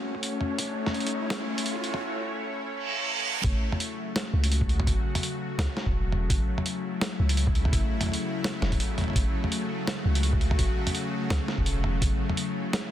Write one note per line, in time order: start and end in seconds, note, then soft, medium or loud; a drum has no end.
0.00 3.40 A3 medium
0.00 3.40 C#4 medium
0.00 0.56 F#4 medium
0.00 3.40 C#5 medium
0.00 riser medium
0.15 kick medium
0.23 closed hi-hat medium
0.41 mid tom medium
0.58 3.41 E4 medium
0.58 kick loud
0.58 closed hi-hat medium
0.86 snare soft
0.86 mid tom medium
0.94 closed hi-hat soft
1.00 closed hi-hat soft
1.07 closed hi-hat medium
1.30 snare loud
1.30 closed hi-hat medium
1.58 open hi-hat medium
1.66 closed hi-hat medium
1.76 kick loud
1.84 open hi-hat soft
1.94 mid tom medium
2.73 reverse cymbal medium
3.44 3.53 F#1 medium
3.44 12.91 C#3 medium
3.44 12.91 F#3 medium
3.44 12.91 A3 medium
3.44 6.29 F#4 medium
3.44 kick loud
3.44 closed hi-hat medium
3.72 mid tom medium
3.80 closed hi-hat medium
4.16 snare loud
4.16 closed hi-hat medium
4.33 4.86 C#2 loud
4.44 open hi-hat medium
4.52 closed hi-hat medium
4.61 kick loud
4.69 open hi-hat soft
4.80 mid tom medium
4.87 4.96 F#1 loud
4.87 kick loud
4.87 closed hi-hat medium
5.15 mid tom medium
5.15 open hi-hat medium
5.23 closed hi-hat medium
5.58 5.68 C#2 loud
5.58 snare loud
5.58 closed hi-hat medium
5.77 snare medium
5.86 6.29 E1 medium
5.86 kick medium
6.12 mid tom medium
6.30 6.39 F#1 loud
6.30 9.15 E4 medium
6.30 kick loud
6.30 closed hi-hat medium
6.58 mid tom medium
6.66 closed hi-hat medium
7.01 snare loud
7.01 closed hi-hat medium
7.20 7.72 C#2 loud
7.29 open hi-hat medium
7.37 closed hi-hat medium
7.47 kick loud
7.55 open hi-hat soft
7.65 mid tom medium
7.73 7.82 F#1 loud
7.73 kick loud
7.73 closed hi-hat medium
8.01 mid tom soft
8.01 open hi-hat medium
8.03 mid tom soft
8.06 mid tom soft
8.09 mid tom soft
8.12 closed hi-hat medium
8.12 mid tom soft
8.15 mid tom soft
8.44 snare loud
8.44 closed hi-hat medium
8.62 8.79 E1 loud
8.62 snare medium
8.72 kick medium
8.72 closed hi-hat soft
8.80 closed hi-hat medium
8.98 closed hi-hat soft
8.98 mid tom soft
9.01 mid tom soft
9.04 mid tom soft
9.08 mid tom soft
9.10 mid tom soft
9.13 9.25 F#1 loud
9.13 12.01 F#4 medium
9.13 kick loud
9.13 closed hi-hat medium
9.13 mid tom soft
9.44 mid tom medium
9.52 closed hi-hat medium
9.87 snare loud
9.87 closed hi-hat medium
10.05 10.58 C#2 loud
10.15 open hi-hat medium
10.23 closed hi-hat medium
10.33 kick loud
10.41 open hi-hat soft
10.51 mid tom medium
10.59 10.68 F#1 loud
10.59 kick loud
10.59 closed hi-hat medium
10.87 mid tom medium
10.87 open hi-hat medium
10.95 closed hi-hat medium
11.30 11.39 C#2 loud
11.30 snare loud
11.30 closed hi-hat medium
11.48 snare medium
11.58 12.00 E1 medium
11.58 kick medium
11.66 closed hi-hat medium
11.84 mid tom medium
12.01 12.11 F#1 loud
12.01 12.91 E4 medium
12.01 kick loud
12.01 closed hi-hat medium
12.29 mid tom medium
12.37 closed hi-hat medium
12.73 snare loud
12.73 closed hi-hat medium